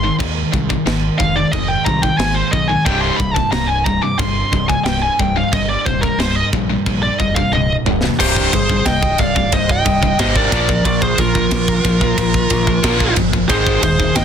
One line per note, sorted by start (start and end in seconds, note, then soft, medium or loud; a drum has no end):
0.00 0.18 G#2 medium
0.00 0.19 D#3 medium
0.00 0.16 C6 medium
0.20 0.43 D#2 loud
0.20 0.50 G#2 medium
0.20 0.50 D#3 loud
0.20 kick loud
0.20 china medium
0.53 0.76 C2 medium
0.53 0.69 G#2 medium
0.53 0.68 D#3 medium
0.53 kick loud
0.69 0.85 G#2 medium
0.69 0.85 D#3 medium
0.69 kick medium
0.86 1.09 G#1 medium
0.86 1.16 G#2 medium
0.86 1.16 D#3 medium
0.86 snare loud
0.86 china medium
1.18 1.43 F1 medium
1.18 1.35 G#2 medium
1.18 1.35 D#3 medium
1.18 1.35 F5 loud
1.18 kick medium
1.36 1.52 G#2 medium
1.36 1.52 D#3 medium
1.36 1.52 D5 loud
1.52 1.76 F1 loud
1.52 1.83 G#2 medium
1.52 1.83 D#3 medium
1.52 1.68 D#5 medium
1.52 kick loud
1.52 china medium
1.68 1.85 G5 medium
1.85 2.09 C2 loud
1.85 2.02 G#2 medium
1.85 2.01 D#3 medium
1.85 2.02 A#5 loud
1.85 kick medium
2.02 2.17 G#2 medium
2.02 2.18 D#3 medium
2.02 2.17 G5 loud
2.02 kick loud
2.18 2.42 G#1 medium
2.18 2.49 G#2 medium
2.18 2.49 D#3 medium
2.18 2.35 G#5 loud
2.18 snare loud
2.18 china medium
2.35 2.52 C5 medium
2.51 2.76 B1 medium
2.51 2.69 G#2 medium
2.51 2.68 D#3 medium
2.51 2.68 D#5 medium
2.51 kick medium
2.68 2.85 G#2 medium
2.68 2.86 D#3 medium
2.68 2.85 G#5 loud
2.85 3.09 C1 loud
2.85 3.17 C2 medium
2.85 3.17 G2 medium
2.85 3.18 C3 loud
2.85 3.01 G5 loud
2.85 kick loud
2.85 china medium
3.01 3.17 C6 loud
3.17 3.42 C1 loud
3.17 3.34 C2 medium
3.17 3.33 G2 medium
3.17 3.34 B5 loud
3.17 kick loud
3.34 3.50 C2 medium
3.34 3.51 G2 medium
3.34 3.51 A5 medium
3.34 kick medium
3.52 3.98 C1 medium
3.52 3.82 C2 medium
3.52 3.82 G2 medium
3.52 3.68 A#5 loud
3.52 snare loud
3.52 china medium
3.68 3.85 G#5 loud
3.84 4.02 C2 medium
3.84 4.01 G2 medium
3.84 4.01 A#5 loud
3.84 kick medium
4.02 4.18 C2 medium
4.02 4.19 G2 medium
4.02 4.18 D6 loud
4.19 4.42 G1 loud
4.19 4.49 C2 medium
4.19 4.50 G2 loud
4.19 4.66 C6 medium
4.19 kick loud
4.19 china medium
4.52 4.75 C1 loud
4.52 4.68 C2 medium
4.52 4.67 G2 medium
4.52 kick medium
4.68 4.85 C2 medium
4.68 4.85 G2 medium
4.68 4.84 G#5 loud
4.68 kick loud
4.84 5.08 C1 medium
4.84 5.16 C2 medium
4.84 5.16 G2 medium
4.84 5.01 G5 medium
4.84 snare loud
4.84 china medium
5.03 5.20 G#5 loud
5.19 5.42 C1 medium
5.19 5.36 C2 medium
5.19 5.35 G2 medium
5.19 5.36 G5 loud
5.19 kick medium
5.36 5.52 C2 medium
5.36 5.52 G2 medium
5.36 5.53 F5 medium
5.52 5.75 G1 loud
5.52 5.83 C2 medium
5.52 5.83 G2 medium
5.52 5.69 D#5 loud
5.52 kick loud
5.52 china medium
5.69 5.85 D5 medium
5.85 6.09 D#1 medium
5.85 6.03 C2 medium
5.85 6.03 G2 medium
5.85 6.01 C5 loud
5.85 kick loud
6.02 6.19 C2 medium
6.02 6.19 G2 medium
6.02 6.18 A#4 medium
6.02 kick medium
6.18 6.41 C1 medium
6.18 6.50 C2 medium
6.18 6.50 G2 medium
6.18 6.35 C5 medium
6.18 snare loud
6.18 china medium
6.35 6.46 D#5 medium
6.53 6.76 A#1 loud
6.53 6.69 C2 medium
6.53 6.68 G2 medium
6.53 kick medium
6.70 6.85 C2 medium
6.70 6.86 G2 medium
6.86 7.09 A#1 medium
6.86 7.16 C2 medium
6.86 7.16 G2 medium
6.86 kick loud
6.86 china medium
7.03 7.19 D5 medium
7.19 7.42 F1 loud
7.19 7.36 C2 medium
7.19 7.36 G2 medium
7.19 7.35 D#5 loud
7.19 kick medium
7.35 7.53 C2 medium
7.35 7.53 G2 medium
7.35 7.51 F5 loud
7.35 kick loud
7.52 7.75 C1 medium
7.52 7.83 C2 medium
7.52 7.83 G2 medium
7.52 7.73 D#5 medium
7.52 high tom medium
7.85 8.08 C1 medium
7.85 8.03 C2 medium
7.85 8.03 G2 medium
7.85 mid tom medium
8.04 8.18 C2 medium
8.04 8.19 G2 medium
8.04 snare loud
8.19 8.48 C1 loud
8.19 8.50 C2 medium
8.19 8.51 G2 medium
8.19 8.51 C3 loud
8.19 8.51 G4 medium
8.19 8.53 C5 loud
8.19 kick medium
8.19 crash loud
8.36 kick medium
8.53 8.81 G1 medium
8.53 8.69 C2 medium
8.53 8.69 G2 medium
8.53 8.84 G#4 medium
8.53 8.87 C5 medium
8.53 kick loud
8.53 ride medium
8.69 8.86 C2 medium
8.69 8.86 G2 medium
8.69 kick medium
8.85 9.14 C1 loud
8.85 9.16 C2 medium
8.85 9.16 G2 medium
8.85 9.18 D#5 medium
8.85 9.19 G5 loud
8.85 kick medium
8.85 snare loud
8.85 ride loud
9.03 kick medium
9.18 9.47 C1 medium
9.18 9.35 C2 medium
9.18 9.34 G2 medium
9.18 9.53 F5 loud
9.18 kick medium
9.18 ride medium
9.22 9.51 D5 medium
9.35 9.52 C2 medium
9.35 9.52 G2 medium
9.35 kick medium
9.52 9.81 C1 loud
9.52 9.82 C2 medium
9.52 9.82 G2 medium
9.52 9.68 C5 medium
9.52 9.70 D#5 loud
9.52 kick loud
9.52 ride loud
9.69 10.16 D#5 loud
9.69 10.21 G5 loud
9.69 kick loud
9.86 10.14 C1 loud
9.86 10.02 C2 medium
9.86 10.01 G2 medium
9.86 kick medium
9.86 ride medium
10.03 10.18 C2 medium
10.03 10.19 G2 medium
10.03 kick loud
10.19 10.47 G#1 loud
10.19 10.50 C2 loud
10.19 10.50 G2 loud
10.19 10.50 C3 loud
10.19 10.35 C5 medium
10.19 10.36 D#5 loud
10.19 kick loud
10.19 snare loud
10.19 ride loud
10.36 10.82 A#4 medium
10.36 10.84 D5 medium
10.36 kick medium
10.52 10.80 A#1 medium
10.52 10.66 A#2 loud
10.52 10.66 F3 loud
10.52 10.67 A#3 loud
10.52 kick medium
10.52 ride medium
10.69 10.84 A#2 medium
10.69 10.85 F3 medium
10.69 kick medium
10.85 11.13 A#1 loud
10.85 11.15 A#2 medium
10.85 11.15 F3 medium
10.85 11.01 A#4 medium
10.85 11.00 D5 loud
10.85 kick medium
10.85 ride loud
11.02 11.18 G#4 medium
11.02 11.19 C5 medium
11.02 kick medium
11.18 11.46 A#1 medium
11.18 11.34 A#2 medium
11.18 11.34 F3 loud
11.18 13.14 F4 medium
11.18 13.13 A#4 medium
11.18 kick loud
11.18 ride loud
11.35 11.50 A#2 medium
11.35 11.51 F3 medium
11.35 kick medium
11.51 11.79 A#1 medium
11.51 11.81 A#2 medium
11.51 11.81 F3 medium
11.51 kick medium
11.51 snare loud
11.51 ride loud
11.68 kick medium
11.84 12.13 A#1 medium
11.84 12.00 A#2 medium
11.84 12.00 F3 loud
11.84 kick medium
11.84 ride medium
12.01 12.17 A#2 medium
12.01 12.17 F3 medium
12.01 kick medium
12.18 12.46 A#1 loud
12.18 12.47 A#2 medium
12.18 12.47 F3 loud
12.18 kick loud
12.18 ride loud
12.34 kick medium
12.50 12.79 A#1 loud
12.50 12.66 A#2 medium
12.50 12.66 F3 loud
12.50 kick medium
12.50 ride medium
12.67 12.82 A#2 medium
12.67 12.83 F3 medium
12.67 kick medium
12.83 13.12 A#1 medium
12.83 13.14 A#2 loud
12.83 13.15 F3 loud
12.83 13.15 A#3 loud
12.83 kick loud
12.83 snare loud
12.83 ride loud
13.00 kick medium
13.16 13.45 G1 medium
13.16 13.32 A#2 medium
13.16 13.32 F3 medium
13.16 kick medium
13.16 ride medium
13.33 13.49 A#2 medium
13.33 13.49 F3 medium
13.33 kick loud
13.49 13.78 G#1 loud
13.49 13.80 G#2 loud
13.49 13.81 D#3 loud
13.49 13.81 G#3 loud
13.49 13.80 G#4 medium
13.49 13.83 C5 loud
13.49 kick medium
13.49 ride loud
13.67 kick loud
13.82 14.11 D#1 medium
13.82 13.99 G#2 medium
13.82 13.99 D#3 loud
13.82 14.13 G#4 medium
13.82 14.17 C5 loud
13.82 kick loud
13.82 ride medium
14.00 14.15 G#2 medium
14.00 14.15 D#3 medium
14.00 kick medium
14.15 14.25 G#1 medium
14.15 14.25 G#2 medium
14.15 14.25 D#3 medium
14.15 14.25 D#5 medium
14.15 14.25 G5 loud
14.15 kick loud
14.15 snare loud
14.15 ride loud